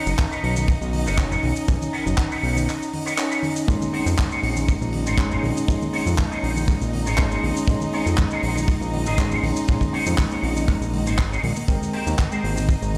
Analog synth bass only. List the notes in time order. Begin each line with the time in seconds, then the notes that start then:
0.06 F#1
0.43 B1
0.81 B1
1.06 F#1
1.43 B1
1.68 B1
2.06 F#1
2.43 B1
3.68 A#1
4.06 F2
4.43 A#1
4.81 A#1
5.07 G#1
5.43 A#1
5.68 A#1
6.06 F2
6.43 A#1
6.81 A#1
7.06 G#1
7.43 A#1
7.68 A#1
8.06 F2
8.43 A#1
8.81 A#1
9.05 G#1
9.43 A#1
9.69 A#1
10.06 F2
10.43 A#1
10.81 A#1
11.06 G#1
11.43 A#1
11.68 G#1
12.07 D#2
12.44 G#1
12.82 G#1